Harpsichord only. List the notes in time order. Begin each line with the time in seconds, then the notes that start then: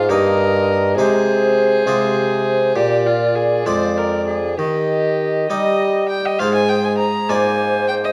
0.10 G2 A#3 D#4 D#5
0.98 C3 G#3 D#4 D#5
1.87 C3 G#3 F4 D#5
2.76 A#2
3.66 F2 G#3 F4 D5
4.59 D#3
5.50 G3 D#4 D#5
6.40 G#2 G#3 F4 C5
7.29 G#2 A#3 F4 D5